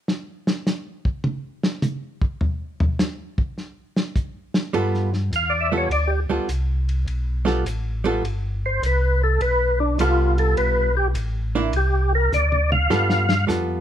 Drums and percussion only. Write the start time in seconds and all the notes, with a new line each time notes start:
0.08 snare
0.47 snare
0.67 snare, hi-hat pedal
1.05 kick
1.24 high tom
1.63 snare
1.82 hi-hat pedal, high tom
2.21 kick
2.41 floor tom
2.80 floor tom
2.99 snare, hi-hat pedal
3.38 kick
3.58 snare
3.96 snare
4.16 kick, hi-hat pedal
4.54 snare
4.74 ride
4.94 snare
5.13 snare
5.33 hi-hat pedal, ride
5.91 ride
6.49 hi-hat pedal, ride
6.89 ride
7.08 ride
7.47 snare
7.66 hi-hat pedal, ride
8.05 ride
8.25 ride
8.83 hi-hat pedal, ride
9.41 ride
9.99 hi-hat pedal, ride
10.38 ride
10.57 ride
11.15 hi-hat pedal, ride
11.73 ride
12.33 hi-hat pedal, high tom
12.52 high tom
12.72 high tom
12.90 snare
13.10 snare
13.29 snare
13.49 snare, hi-hat pedal